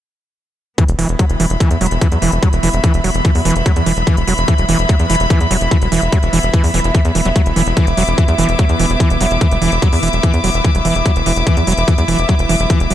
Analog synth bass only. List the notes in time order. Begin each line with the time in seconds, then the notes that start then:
0.88 E1
0.99 E1
1.09 E1
1.30 E1
1.40 E1
1.50 E1
1.71 E2
1.81 E1
1.91 E1
2.12 E2
2.22 E1
2.32 E1
2.53 E1
2.63 E1
2.73 E1
2.94 E1
3.04 E1
3.15 E1
3.35 E2
3.45 E1
3.56 E1
3.76 E2
3.86 E1
3.97 E1
4.17 E1
4.28 E1
4.38 E1
4.58 E1
4.69 E1
4.79 E1
4.99 E2
5.10 E1
5.20 E1
5.41 E2
5.51 E1
5.61 E1
5.82 E1
5.92 E1
6.02 E1
6.23 E1
6.33 E1
6.43 E1
6.64 E2
6.74 E1
6.84 E1
7.05 E2
7.15 E1
7.25 E1
7.46 E1
7.56 E1
7.67 E1
7.87 E1
7.97 E1
8.08 E1
8.28 E2
8.38 E1
8.49 E1
8.69 E2
8.79 E1
8.90 E1
9.10 E1
9.21 E1
9.31 E1
9.51 E1
9.62 E1
9.72 E1
9.93 E2
10.03 E1
10.13 E1
10.34 E2
10.44 E1
10.54 E1
10.75 E1
10.85 E1
10.95 E1
11.16 E1
11.26 E1
11.36 E1
11.57 E2
11.67 E1
11.77 E1
11.98 E2
12.08 E1
12.19 E1
12.39 E1
12.49 E1
12.60 E1
12.80 E1
12.90 E1